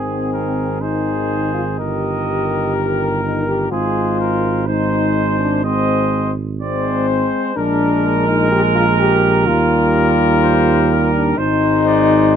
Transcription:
Already playing: G#1 D#3 C4 G#4
0.33 A#4
0.81 D#3 D#4 G#4 C5
1.54 F4
1.79 G1 D#3 G4 A#4 D#5
2.76 A#4
3.23 D#4
3.48 G4
3.71 G#1 G#3 F4 G#4 C5
4.20 A#4
4.66 G#3 D#4 C5
5.39 D4
5.64 G#3 C4 C5 D#5
6.60 G#3 C4 C5 D5
7.09 C5
7.56 A#1 G#3 D4 A#4
8.28 D#4
8.52 G4
8.75 F4
8.99 G4
9.47 D#2 G3 F4 A#4
10.43 C5
10.91 A#4
11.14 D4
11.38 G#1 G#3 D#4 C5
11.87 D5

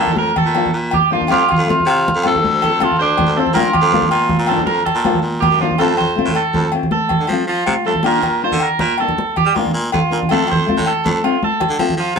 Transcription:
Already playing: A#2 D4
0.00 F3 A#3 D4 F4 A4
0.07 low conga
0.16 F2 A#4, high conga
0.36 A4, low conga, low agogo
0.45 A#2
0.55 F3 A#3 D4 F4, low agogo
0.66 low conga
0.73 A#2
0.91 G4, high conga, low conga, low agogo
1.10 F3 A#3 D4 F4, low conga
1.21 low conga
1.28 F2 A3 C4 F4 G4, high conga, low conga, low agogo
1.48 F4, low conga, low agogo
1.58 F2
1.67 A3 C4 F4, high conga
1.80 low conga
1.86 C3 F4, low agogo
1.99 low conga
2.08 high conga, low conga
2.15 F2, low conga
2.23 A3 C4 F4 A4, low agogo
2.35 low conga
2.42 D2, high conga
2.62 A4, low conga, low agogo
2.70 F2
2.79 A3 C4 F4 A4, high conga, low conga, low agogo
2.84 F4
2.91 low conga
2.98 D2 D4 C5
3.18 high conga, low conga, low agogo
3.26 D2
3.36 A3 C4 F4 A4, low conga
3.47 low conga
3.54 A#2 F3 A#3 D4 F4 A#4, high conga, low conga, low agogo
3.59 F4
3.66 low conga
3.73 G4, low conga, low agogo
3.82 F2
3.92 F3 A#3 D4 F4, high conga
4.02 low conga
4.11 A#2 F4, low agogo
4.29 high conga, low conga
4.39 A#2
4.47 F3 A#3 A4, low agogo
4.51 D4 F4
4.58 low conga
4.66 F2 A#4, high conga
4.78 low conga
4.85 A4, low conga, low agogo
4.95 A#2
5.05 F3 A#3 D4 F4, high conga, low agogo
5.14 low conga
5.22 A#2
5.40 G4, high conga, low conga, low agogo
5.50 F#2
5.60 F3 A#3 D4 F4
5.71 low conga
5.78 F2 A3 C4 F4 A4, high conga, low agogo
5.97 C5, low conga, low agogo
6.10 low conga
6.15 A3 C4 F4, high conga, low conga
6.26 A2, low conga
6.35 A4, low agogo
6.54 F2, high conga, low conga
6.72 A3 C4 F4, low agogo
6.83 low conga
6.91 A4, high conga
7.09 low conga, low agogo
7.20 D3
7.27 F3 A3, high conga, low agogo
7.31 C4 F4
7.47 F3 F4, low conga
7.66 C3, high conga, low agogo
7.85 F2 A3 C4 F4 A4
7.95 low conga
8.03 A#2 A#3 D4 F4 A#4, high conga, low agogo
8.22 low conga, low agogo
8.34 low conga
8.42 A#3 D4 F4 C5, low conga
8.52 D3, low conga
8.60 A#4, low agogo
8.79 A#2 A#4, high conga, low conga
8.98 A#3 D4 A4, low agogo
9.02 muted nylon-string guitar stroke
9.08 low conga
9.18 high conga
9.36 G4, low conga, low agogo
9.46 G3, low conga
9.54 A#2 A#3 D4, muted clean electric guitar stroke, high conga, low agogo
9.59 F4
9.66 low conga
9.74 A#2, low conga
9.92 F2 F4, high conga, low conga, low agogo
10.10 A#2 A#3 D4
10.22 low conga
10.29 F2 A3 C4 F4 A4, high conga, low agogo
10.48 C5, low agogo
10.52 low conga
10.66 A3 C4 F4, high conga, low conga
10.78 A2, low conga
10.86 A4, low agogo
11.05 F2, high conga, low conga
11.23 A3 C4 F4, low agogo
11.43 A4, high conga
11.60 low conga, low agogo
11.70 D3, low conga
11.78 F3 A3 C4 F4, high conga, low agogo
11.89 low conga
11.97 F3 F4, low conga
12.16 C3

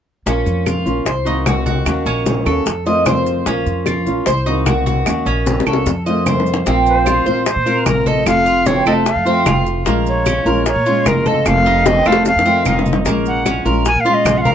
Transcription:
0.26 A#1 F3 A#3 C#4 F4, high bongo, high conga, maracas
0.46 F2, high conga, maracas
0.66 F4, high bongo, high conga, claves, maracas
0.86 A#1 A#3 C#4 F4, high conga, maracas
1.05 C2 C5, muted nylon-string guitar stroke, high bongo, high conga, maracas
1.25 D#3 A#3 C4 D#4 F#4, high conga, maracas
1.45 D#3 A#3 C4 F#4, high bongo, low bongo, high conga, claves, maracas
1.66 F#4, high conga, maracas
1.85 D#2 D#3 A#3 C#4 F#4, high bongo, high conga, claves, maracas
2.06 A#1 C#4, high conga, maracas
2.26 high bongo, high conga, maracas
2.45 D#2 A#3 C#4 F#4 A4, high bongo, high conga, claves, maracas
2.66 F2, muted nylon-string guitar stroke, high bongo, high conga, maracas
2.86 D#3 A3 C4 F4 D#5, high bongo, high conga, maracas
3.06 D#3 A3 C4 F4 C5, high bongo, low bongo, high conga, claves, maracas
3.26 high bongo, maracas
3.46 A#1 F3 A#3 C#4 F4, high bongo, high conga, maracas
3.66 F2, high conga, maracas
3.86 F4, high bongo, high conga, claves, maracas
4.06 A#1 A#3 C#4 F4, high conga, maracas
4.26 C2 C5, muted nylon-string guitar stroke, high bongo, high conga, maracas
4.46 D#3 A#3 C4 D#4 F#4, high conga, maracas
4.66 D#3 A#3 C4 F#4, high bongo, low bongo, high conga, claves, maracas
4.86 F#4, high conga, maracas
5.06 D#2 D#3 A#3 C#4 F#4, high bongo, claves, maracas
5.26 A#1 C#4, high conga, maracas
5.46 high bongo, high conga, maracas
5.60 high bongo
5.66 C2 A#3 C#4 F#4 A4, high conga, claves, maracas
5.73 high bongo
5.86 F2, muted nylon-string guitar stroke, high bongo, high conga, maracas
6.06 D#3 A3 C4 F4 D#5, high conga, maracas
6.26 D#3 A3 C4 F4 C5, low bongo, high conga, claves, maracas
6.40 low bongo
6.46 maracas
6.54 low bongo
6.66 A#1 F3 A#3 C4 F4, high bongo, high conga, maracas
6.86 C5, high conga, maracas
7.06 F4, high bongo, high conga, claves, maracas
7.26 A#1 A#3 C4 F4 C5, high conga, maracas
7.46 C5, muted nylon-string guitar stroke, high bongo, high conga, maracas
7.56 A#2
7.66 A#3 C4 F4 A#4, high conga, maracas
7.86 A#1 F3 A#3 C4 F4 A#4, high bongo, low bongo, high conga, claves, maracas
8.06 A4 D#5, high conga, maracas
8.26 F1 C3 F3 A3 C4 F4 F5, high bongo, high conga, claves, maracas
8.46 F4, high conga, maracas
8.66 C4 C#5, high bongo, high conga, maracas
8.86 F1 F3 A3 C4 F4 D#5, high bongo, high conga, claves, maracas
9.06 F5, muted nylon-string guitar stroke, high bongo, high conga, maracas
9.16 F2
9.25 F3 A3 C4 F4, high bongo, high conga, maracas
9.45 F1 F3 A3 C4 F4, high bongo, low bongo, high conga, claves, maracas
9.66 high bongo, maracas
9.85 A#1 F3 G#3 A#3 C#4 F4, high bongo, high conga, maracas
10.06 C#5, high conga, maracas
10.26 C#4, high bongo, high conga, claves, maracas
10.45 A#1 G#3 C#4 F4 A#4, high conga, maracas
10.66 C#5, muted nylon-string guitar stroke, high bongo, high conga, maracas
10.76 A#2
10.86 G#3 C#4 F4, high conga, maracas
11.06 F#1 F3 G#3 C#4 F4 A#4, high bongo, low bongo, high conga, claves, maracas
11.26 A4 D#5, high conga, maracas
11.46 F1 C3 D#3 A3 C4 F4 F5, high bongo, high conga, claves, maracas
11.66 D#4, high conga, maracas
11.86 C4 D#5, high bongo, high conga, maracas
12.05 F1 D#3 A3 C4 F4 F5, high conga, claves, maracas
12.12 high bongo
12.25 F5, muted nylon-string guitar stroke, high bongo, high conga, maracas
12.36 F2, low bongo
12.45 D#3 A3 C4 F4, high conga, maracas
12.65 F1 D#3 A3 C4 D#4 F4, low bongo, high conga, claves, maracas
12.79 low bongo
12.86 high conga, maracas
12.93 low bongo
13.05 A#1 F3 G#3 A#3 C#4, high bongo, high conga, maracas
13.26 F#5, high conga, maracas
13.46 C#4, high bongo, high conga, claves, maracas
13.65 A#1 G#3 C#4 F4 A#4, high conga, maracas
13.85 G#5, muted nylon-string guitar stroke, high bongo, high conga, maracas
13.95 A#2
14.00 F5
14.05 G#3 C#4 F4, high conga, maracas
14.14 D#5
14.25 A#1 F3 G#3 C#4 F4, high bongo, low bongo, high conga, claves, maracas
14.38 F5 F#5
14.45 A#4, high conga, maracas

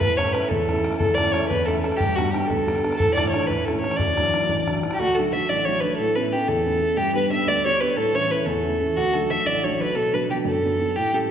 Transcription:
0.00 A2 B4, bodhran
0.17 A3 C#4 E4 C#5, bodhran
0.33 A3 C#4 E4 B4, bodhran
0.48 E2 A4, bodhran
0.69 A3 C#4 E4, bodhran
0.84 A3 C#4 E4, bodhran
0.93 bodhran
0.97 E2 A4, bodhran
1.15 D5, bodhran
1.19 A3 C#4 E4
1.32 A3 C#4 E4 C#5, bodhran
1.48 E2 B4, bodhran
1.66 A3 C#4 E4 A4, bodhran
1.82 A3 C#4 A4, bodhran
1.92 bodhran
1.97 G4, bodhran
2.02 G2
2.16 G3 B3 D4 F#4, bodhran
2.31 G3 B3 D4 G4, bodhran
2.46 D2 A4, bodhran
2.67 G3 B3 D4, bodhran
2.84 G3 B3 D4, bodhran
2.93 A4, bodhran
3.00 A2, bodhran
3.14 E3 D5, bodhran
3.19 A3 D4
3.29 C#5
3.34 E3 A3 D4, bodhran
3.47 B4, bodhran
3.51 A2
3.65 E3 A3 A4, bodhran
3.69 C#4
3.80 E3 A3 C#5, bodhran
3.85 C#4
3.91 bodhran
3.96 D2 D5, bodhran
4.16 E3 F#3 D4, bodhran
4.34 E3 F#3 D4, bodhran
4.49 A1, bodhran
4.67 E3 F#3 D4, bodhran
4.83 E3 F#3 D4, bodhran
4.91 G4, bodhran
4.99 D2 F#4
5.15 F#3 A3 D4 A4
5.33 F#3 A3 D4 E5
5.49 A1 D5
5.65 F#3 A3 D4 C#5
5.81 F#3 A3 D4 B4
5.97 A2 A4
6.15 A3 B3 C#4 B4
6.32 A3 B3 C#4 G4
6.48 E2 A4
6.64 A3 B3 C#4
6.80 A3 B3 C#4
6.97 G2 G4
7.14 G3 B3 D4 B4
7.30 G3 B3 D4 E5
7.46 D2 D5
7.65 G3 B3 D4 C#5
7.80 G3 B3 D4 B4
7.96 A2 A4
8.13 E3 A3 C#4 C#5
8.30 E3 A3 C#4 B4
8.46 E2 A4
8.64 E3 A3 C#4
8.80 E3 A3 C#4
8.96 D2 F#4
9.13 F#3 A3 D4 A4
9.30 F#3 A3 D4 E5
9.46 A1 D5
9.63 F#3 A3 D4 C#5
9.79 F#3 A3 D4 B4
9.95 B2 A4
10.13 F#3 B3 D4 B4
10.29 F#3 B3 D4 G4
10.45 F#2 A4
10.63 F#3 B3 D4
10.78 F#3 B3 D4
10.96 A2 G4
11.13 G3 A3 C#4 A4

